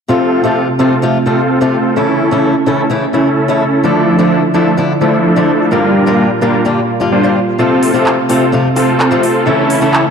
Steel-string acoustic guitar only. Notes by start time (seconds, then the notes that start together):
0.08 C3 F3 A3 F4
0.44 C3 F3 A3 F4
0.79 C3 F3 A3 F4
1.02 C3 F3 A3 F4
1.26 C3 F3 A3 F4
1.61 C3 F3 A3 F4
1.96 C#3 E3 A3 E4
2.31 C#3 E3 A3 E4
2.66 C#3 E3 A3 E4
2.90 C#3 E3 A3 E4
3.13 C#3 E3 A3 E4
3.48 C#3 E3 A3 E4
3.84 D3 F3 A3 E4
4.19 D3 F3 A3 E4
4.54 D3 F3 A3 E4
4.77 D3 F3 A3 E4
5.01 D3 F3 A3 E4
5.36 D3 F3 A3 E4
5.71 G2 D3 G3 A#3 F4
6.06 G2 D3 G3 A#3 F4
6.41 G2 D3 G3 A#3 F4
6.65 G2 D3 G3 A#3 F4
7.00 G2 D3 G3 A#3 F4
7.23 G2 D3 G3 A#3 F4
7.59 C3 F3 A3 F4
7.94 C3 F3 A3 F4
8.29 C3 F3 A3 F4
8.52 C3 F3 A3 F4
8.76 C3 F3 A3 F4
9.11 C3 F3 A3 F4
9.46 C#3 E3 A3 E4
9.81 C#3 E3 A3 E4